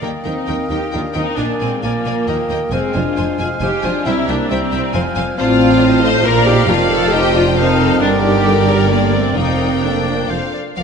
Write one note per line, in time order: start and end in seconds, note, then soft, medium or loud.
0.01 0.10 D#2 soft
0.01 0.10 D#3 medium
0.01 0.12 G3 medium
0.01 0.09 A#3 medium
0.01 1.34 A#3 soft
0.01 1.34 A#4 medium
0.01 0.10 A#4 soft
0.01 1.34 D#5 medium
0.01 0.10 G5 soft
0.01 1.34 G5 soft
0.24 0.33 D#2 soft
0.24 0.34 D#3 soft
0.24 0.69 C4 medium
0.24 0.69 D#4 medium
0.24 0.33 A#4 soft
0.24 0.33 G5 soft
0.48 0.56 D#2 soft
0.48 0.56 D#3 soft
0.48 0.56 A#4 soft
0.48 0.56 G5 soft
0.69 0.78 D#2 soft
0.69 0.79 D#3 soft
0.69 0.80 D#4 medium
0.69 0.92 G4 medium
0.69 0.79 A#4 soft
0.69 0.79 G5 soft
0.92 1.01 D#2 medium
0.92 1.01 D#3 medium
0.92 1.15 D4 medium
0.92 1.00 F4 medium
0.92 1.02 A#4 soft
0.92 1.00 G5 soft
1.14 1.23 D#2 soft
1.14 1.23 D#3 medium
1.14 1.38 C4 medium
1.14 1.37 D#4 medium
1.14 1.23 A#4 soft
1.14 1.22 G5 soft
1.37 1.46 A#1 medium
1.37 1.46 A#2 medium
1.37 1.82 A#3 soft
1.37 1.48 A#3 medium
1.37 1.60 D4 medium
1.37 1.46 A#4 soft
1.37 1.82 A#4 soft
1.37 1.46 D5 soft
1.37 1.83 D5 soft
1.37 1.45 G#5 soft
1.37 1.83 G#5 soft
1.60 1.69 A#1 soft
1.60 1.69 A#2 soft
1.60 1.83 G#3 medium
1.60 1.83 C4 medium
1.60 1.69 A#4 soft
1.60 1.69 D5 soft
1.60 1.69 G#5 soft
1.82 1.91 A#1 medium
1.82 1.91 A#2 soft
1.82 2.51 F3 medium
1.82 2.49 A#3 medium
1.82 2.27 A#3 medium
1.82 2.28 A#4 medium
1.82 1.92 A#4 soft
1.82 2.29 D5 soft
1.82 1.93 D5 medium
1.82 2.30 G#5 soft
1.82 1.92 G#5 soft
2.05 2.14 A#1 medium
2.05 2.13 A#2 medium
2.05 2.15 A#4 soft
2.05 2.15 D5 soft
2.05 2.13 G#5 soft
2.28 2.36 D#2 medium
2.28 2.74 A#3 medium
2.28 2.74 A#4 medium
2.28 2.36 A#4 soft
2.28 2.73 D#5 soft
2.28 2.36 D#5 soft
2.28 2.36 G5 soft
2.28 2.74 G5 medium
2.50 2.58 D#2 medium
2.50 2.58 D#2 soft
2.50 2.59 A#4 soft
2.50 2.59 D#5 soft
2.50 2.58 G5 soft
2.72 2.80 F1 medium
2.72 2.80 F2 medium
2.72 4.06 G#3 medium
2.72 2.94 G#3 medium
2.72 2.93 C4 medium
2.72 4.06 C5 medium
2.72 2.81 C5 soft
2.72 4.07 F5 medium
2.72 2.80 G#5 medium
2.72 4.08 G#5 medium
2.94 3.04 F1 soft
2.94 3.03 F2 medium
2.94 3.40 D4 medium
2.94 3.40 F4 medium
2.94 3.04 C5 soft
2.94 3.02 G#5 soft
3.17 3.26 F1 medium
3.17 3.26 F2 medium
3.17 3.26 C5 medium
3.17 3.25 G#5 soft
3.39 3.48 F1 medium
3.39 3.48 F2 medium
3.39 3.50 F4 medium
3.39 3.48 G#4 medium
3.39 3.48 C5 soft
3.39 3.47 G#5 medium
3.60 3.70 F1 medium
3.60 3.70 F2 medium
3.60 3.72 D#4 medium
3.60 3.84 G4 medium
3.60 3.70 C5 soft
3.60 3.68 G#5 soft
3.83 3.92 F1 medium
3.83 3.92 F2 medium
3.83 4.05 D4 medium
3.83 4.07 F4 medium
3.83 3.92 C5 medium
3.83 3.91 G#5 medium
4.05 4.14 C2 medium
4.05 4.15 C2 medium
4.05 4.50 G3 medium
4.05 4.28 C4 medium
4.05 4.28 E4 medium
4.05 4.14 C5 medium
4.05 4.49 C5 medium
4.05 4.49 E5 medium
4.05 4.14 E5 medium
4.05 4.13 G5 medium
4.05 4.50 A#5 medium
4.28 4.37 C2 medium
4.28 4.50 A#3 medium
4.28 4.50 D4 medium
4.28 4.36 C5 medium
4.28 4.36 E5 soft
4.28 4.36 G5 soft
4.49 4.58 C2 medium
4.49 5.16 G3 medium
4.49 4.96 G3 medium
4.49 5.17 C4 medium
4.49 4.94 C5 medium
4.49 4.59 C5 medium
4.49 4.95 E5 medium
4.49 4.59 E5 medium
4.49 4.59 G5 medium
4.49 4.96 A#5 medium
4.72 4.80 C2 medium
4.72 4.80 C5 soft
4.72 4.80 E5 soft
4.72 4.81 G5 medium
4.93 5.02 F1 medium
4.93 5.03 F2 medium
4.93 5.37 F3 medium
4.93 5.03 C5 medium
4.93 5.38 C5 medium
4.93 5.37 F5 soft
4.93 5.03 F5 medium
4.93 5.02 G#5 medium
4.93 5.38 G#5 medium
5.16 5.24 F1 medium
5.16 5.25 F2 medium
5.16 5.24 C5 medium
5.16 5.25 F5 medium
5.16 5.24 G#5 medium
5.37 6.21 A1 medium
5.37 6.21 A2 medium
5.37 6.23 F3 medium
5.37 5.99 C4 medium
5.37 6.00 F4 loud
5.37 5.46 C5 medium
5.37 6.24 C5 medium
5.37 5.79 D5 medium
5.37 6.08 F5 medium
5.37 5.79 F5 medium
5.37 6.27 A5 medium
5.60 6.24 F5 medium
5.82 6.04 C5 medium
5.82 6.02 D#5 medium
6.03 6.25 A4 medium
6.03 6.25 C5 medium
6.03 6.25 D#5 medium
6.23 6.69 A#1 medium
6.23 6.69 A#2 medium
6.23 6.70 F3 medium
6.23 6.46 F4 medium
6.23 6.47 A#4 loud
6.23 6.67 D5 medium
6.23 6.68 D5 medium
6.23 6.68 F5 medium
6.23 7.11 F5 medium
6.23 6.71 A#5 medium
6.46 6.56 D#4 medium
6.46 6.69 G4 loud
6.68 8.01 F1 medium
6.68 8.01 F2 medium
6.68 7.30 D#3 medium
6.68 6.78 C4 medium
6.68 6.91 F4 medium
6.68 7.28 C5 medium
6.68 7.12 D5 medium
6.68 7.12 F5 medium
6.68 7.28 F5 medium
6.68 7.30 A5 medium
6.90 7.12 F4 medium
6.90 7.12 A4 medium
7.12 7.35 D#4 loud
7.12 7.35 G4 loud
7.12 7.55 C5 medium
7.12 7.57 D#5 medium
7.12 7.57 G5 medium
7.34 7.57 D4 medium
7.34 7.57 F4 medium
7.56 7.98 D#3 medium
7.56 8.01 C4 medium
7.56 8.01 D#4 medium
7.56 7.79 C5 medium
7.56 7.98 C5 medium
7.56 8.01 F5 medium
7.56 7.99 F5 medium
7.56 7.98 A5 medium
7.79 8.01 A4 medium
8.01 9.35 G1 medium
8.01 9.35 G2 medium
8.01 8.87 D3 medium
8.01 8.23 A#3 medium
8.01 8.09 D4 loud
8.01 8.87 A#4 medium
8.01 8.90 A#4 medium
8.01 9.34 D5 medium
8.01 8.87 D5 medium
8.01 8.87 G5 medium
8.23 8.68 D#4 medium
8.23 8.67 G4 medium
8.46 8.54 A4 medium
8.68 8.91 G4 medium
8.68 8.91 A#4 medium
8.91 9.39 D3 medium
8.91 9.14 G3 medium
8.91 9.14 A#3 medium
8.91 9.35 A#4 medium
8.91 9.37 A#4 medium
8.91 9.37 D5 medium
8.91 9.36 D5 medium
8.91 9.38 G5 medium
9.13 9.38 A3 medium
9.13 9.37 C4 medium
9.37 10.28 F1 medium
9.37 10.28 F2 medium
9.37 9.83 F3 medium
9.37 9.84 C4 medium
9.37 9.83 D#4 medium
9.37 10.28 A#4 medium
9.37 9.83 A#4 soft
9.37 9.82 D5 medium
9.37 9.83 F5 medium
9.37 10.28 G5 medium
9.83 10.29 F3 medium
9.83 10.30 A#3 medium
9.83 10.30 D4 medium
9.83 10.08 A4 medium
9.83 10.31 D5 medium
9.83 10.29 F5 soft
10.07 10.30 A#4 medium
10.29 10.38 F1 medium
10.29 10.38 F2 medium
10.29 10.53 F3 soft
10.29 10.55 A4 soft
10.29 10.56 C5 soft
10.29 10.53 C5 soft
10.29 10.41 C5 medium
10.29 10.55 F5 soft
10.29 10.53 F5 medium
10.53 10.64 D5 medium
10.76 10.83 A#1 soft
10.76 10.83 F3 medium
10.76 10.83 F4 soft
10.76 10.83 A#4 soft
10.76 10.83 D5 soft
10.76 10.83 F5 medium